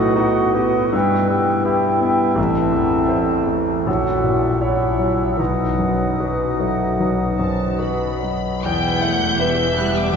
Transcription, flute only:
0.00 0.17 F#5 soft
0.19 0.55 F#5 soft
0.57 0.94 F#5 soft
0.94 1.30 G5 soft
1.31 1.65 G5 soft
1.66 2.01 G5 soft
2.03 2.37 G5 soft
2.37 3.56 A5 soft
3.87 4.61 F#5 soft
4.62 5.38 F#5 soft
5.40 8.23 F#5 soft

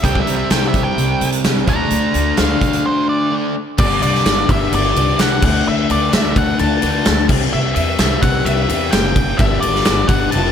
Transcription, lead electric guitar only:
0.04 0.19 G5 medium
0.21 0.35 E5 medium
0.36 0.51 E5 medium
0.52 0.67 G5 medium
0.68 0.83 E5 medium
0.83 1.28 G5 medium
1.69 2.37 A#5 medium
2.39 2.61 F5 medium
2.62 2.85 F5 medium
2.86 3.08 C5 medium
3.09 3.32 D5 medium
3.79 4.01 D5 medium
4.03 4.51 D5 medium
4.52 4.74 E5 medium
4.75 5.22 D5 medium
5.21 5.44 F#5 medium
5.45 5.66 F#5 medium
5.68 5.91 E5 loud
5.91 6.13 D5 medium
6.14 6.37 E5 loud
6.38 6.59 F#5 loud
6.60 7.26 A5 loud
7.53 7.74 E5 medium
7.75 8.19 E5 loud
8.22 8.46 F#5 medium
8.45 8.94 E5 medium
8.91 9.40 G5 medium
9.38 9.60 E5 loud
9.61 10.10 D5 medium
10.08 10.30 F#5 loud
10.31 10.52 A5 loud

